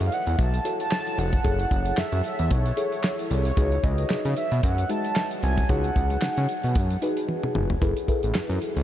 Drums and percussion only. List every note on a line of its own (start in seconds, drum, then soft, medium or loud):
0.00 closed hi-hat medium
0.12 closed hi-hat medium
0.27 closed hi-hat soft
0.39 kick loud
0.39 closed hi-hat medium
0.54 closed hi-hat medium
0.65 closed hi-hat medium
0.80 closed hi-hat medium
0.91 snare loud
0.91 clap medium
1.07 closed hi-hat medium
1.18 closed hi-hat medium
1.33 kick medium
1.33 closed hi-hat medium
1.44 kick loud
1.44 closed hi-hat medium
1.59 closed hi-hat medium
1.71 kick medium
1.71 closed hi-hat medium
1.85 closed hi-hat medium
1.97 snare loud
1.97 clap medium
2.12 closed hi-hat medium
2.24 closed hi-hat medium
2.39 closed hi-hat soft
2.51 kick loud
2.51 closed hi-hat medium
2.66 closed hi-hat medium
2.77 closed hi-hat medium
2.92 closed hi-hat medium
3.03 snare loud
3.03 clap medium
3.19 closed hi-hat medium
3.31 closed hi-hat medium
3.45 closed hi-hat medium
3.57 kick loud
3.57 closed hi-hat medium
3.72 closed hi-hat medium
3.84 kick medium
3.84 closed hi-hat medium
3.98 closed hi-hat medium
4.10 snare loud
4.10 clap medium
4.25 closed hi-hat medium
4.37 closed hi-hat medium
4.52 closed hi-hat soft
4.63 kick loud
4.63 closed hi-hat medium
4.78 closed hi-hat medium
4.90 closed hi-hat medium
5.04 closed hi-hat medium
5.16 snare loud
5.16 clap medium
5.31 closed hi-hat medium
5.43 closed hi-hat medium
5.57 kick medium
5.57 closed hi-hat medium
5.69 kick loud
5.69 closed hi-hat medium
5.84 closed hi-hat medium
5.96 kick medium
5.96 closed hi-hat medium
6.10 closed hi-hat medium
6.21 snare loud
6.21 clap medium
6.37 closed hi-hat medium
6.49 closed hi-hat medium
6.64 closed hi-hat medium
6.75 kick loud
6.75 closed hi-hat medium
6.90 closed hi-hat medium
7.02 closed hi-hat medium
7.17 closed hi-hat medium
7.29 high tom medium
7.43 mid tom medium
7.55 mid tom loud
7.70 floor tom medium
7.82 kick loud
7.82 closed hi-hat medium
7.97 closed hi-hat soft
8.08 kick medium
8.08 closed hi-hat medium
8.23 closed hi-hat medium
8.34 snare loud
8.34 clap medium
8.50 closed hi-hat medium
8.62 closed hi-hat medium
8.77 closed hi-hat soft